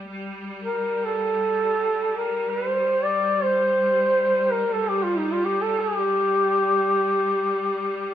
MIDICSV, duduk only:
0, 0, Header, 1, 2, 480
1, 0, Start_track
1, 0, Key_signature, -2, "minor"
1, 0, Tempo, 500000
1, 7814, End_track
2, 0, Start_track
2, 0, Title_t, "Duduk"
2, 0, Program_c, 0, 69
2, 597, Note_on_c, 0, 70, 58
2, 1002, Note_on_c, 0, 69, 69
2, 1017, Note_off_c, 0, 70, 0
2, 2062, Note_off_c, 0, 69, 0
2, 2073, Note_on_c, 0, 70, 57
2, 2398, Note_on_c, 0, 71, 67
2, 2412, Note_off_c, 0, 70, 0
2, 2580, Note_off_c, 0, 71, 0
2, 2580, Note_on_c, 0, 72, 67
2, 2916, Note_on_c, 0, 74, 68
2, 2930, Note_off_c, 0, 72, 0
2, 3294, Note_on_c, 0, 72, 75
2, 3308, Note_off_c, 0, 74, 0
2, 4330, Note_on_c, 0, 70, 65
2, 4345, Note_off_c, 0, 72, 0
2, 4532, Note_on_c, 0, 69, 64
2, 4546, Note_off_c, 0, 70, 0
2, 4693, Note_on_c, 0, 67, 63
2, 4707, Note_off_c, 0, 69, 0
2, 4833, Note_on_c, 0, 65, 60
2, 4847, Note_off_c, 0, 67, 0
2, 4967, Note_on_c, 0, 63, 55
2, 4982, Note_off_c, 0, 65, 0
2, 5100, Note_on_c, 0, 65, 59
2, 5114, Note_off_c, 0, 63, 0
2, 5236, Note_on_c, 0, 67, 61
2, 5251, Note_off_c, 0, 65, 0
2, 5389, Note_on_c, 0, 69, 66
2, 5404, Note_off_c, 0, 67, 0
2, 5562, Note_on_c, 0, 68, 74
2, 5577, Note_off_c, 0, 69, 0
2, 5735, Note_off_c, 0, 68, 0
2, 5735, Note_on_c, 0, 67, 74
2, 7814, Note_off_c, 0, 67, 0
2, 7814, End_track
0, 0, End_of_file